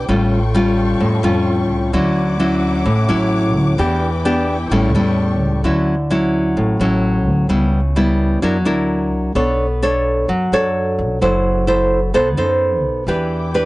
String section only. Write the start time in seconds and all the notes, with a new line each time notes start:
Already playing: G5
0.08 F4 A4 C#6
1.93 C#4 E4 F#5 D6
3.78 E4 B4 G5
4.71 A4 C#6
13.07 E4 B4 G5 D6